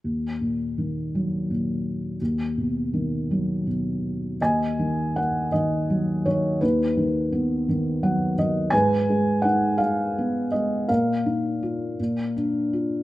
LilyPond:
<<
  \new Staff \with { instrumentName = "Felt piano" } { \time 6/8 \key ees \minor \tempo 4. = 55 << { r2. | r2. | aes''4 ges''8 ees''4 des''8 | b'2~ b'8 r8 |
aes''4 ges''8 f''4 ees''8 | f''2 r4 | } \\ { r2. | r2. | ees''4. r4. | dis'2~ dis'8 r8 |
ces''4. r4. | bes'2 r4 | } >> }
  \new Staff \with { instrumentName = "Felt piano" } { \clef bass \time 6/8 \key ees \minor ees,8 bes,8 ees8 ges8 bes,4 | dis,8 b,8 dis8 fis8 b,4 | ees,8 ees8 bes8 ees8 ges8 ees8 | dis,8 dis8 b8 dis8 <fis fis''>8 <dis dis''>8 |
aes,8 aes8 ees'8 aes8 ces'8 aes8 | bes,8 ees'8 f'8 bes,8 d'8 f'8 | }
>>